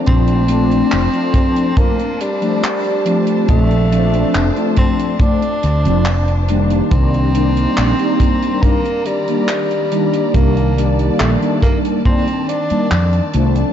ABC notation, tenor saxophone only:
X:1
M:4/4
L:1/8
Q:1/4=70
K:Bb
V:1 name="Tenor saxophone"
C4 B, G,3 | A,2 z C D3 z | C4 B, G,3 | B, z A, B, C D2 z |]